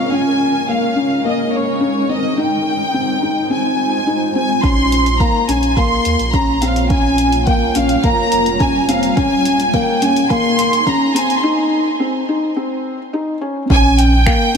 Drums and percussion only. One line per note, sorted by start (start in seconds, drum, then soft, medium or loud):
4.64 kick medium
4.64 closed hi-hat soft
4.92 closed hi-hat medium
5.06 closed hi-hat soft
5.20 kick medium
5.20 closed hi-hat soft
5.49 closed hi-hat medium
5.63 closed hi-hat soft
5.77 kick medium
5.77 closed hi-hat soft
6.05 closed hi-hat medium
6.19 closed hi-hat soft
6.34 kick loud
6.34 closed hi-hat soft
6.62 closed hi-hat medium
6.76 closed hi-hat soft
6.90 kick loud
6.90 closed hi-hat soft
7.18 closed hi-hat medium
7.32 closed hi-hat soft
7.47 kick medium
7.47 closed hi-hat soft
7.75 closed hi-hat medium
7.89 closed hi-hat soft
8.04 kick loud
8.04 closed hi-hat soft
8.32 closed hi-hat medium
8.46 closed hi-hat soft
8.60 kick loud
8.60 closed hi-hat soft
8.89 closed hi-hat medium
9.03 closed hi-hat soft
9.17 kick loud
9.17 closed hi-hat soft
9.45 closed hi-hat medium
9.60 closed hi-hat soft
9.74 kick loud
9.74 closed hi-hat soft
10.02 closed hi-hat medium
10.16 closed hi-hat soft
10.30 kick loud
10.30 closed hi-hat soft
10.59 closed hi-hat medium
10.73 closed hi-hat soft
10.87 kick loud
10.87 closed hi-hat soft
11.16 closed hi-hat medium
11.30 closed hi-hat soft
13.70 kick loud
13.99 closed hi-hat medium
14.27 finger snap loud
14.27 kick loud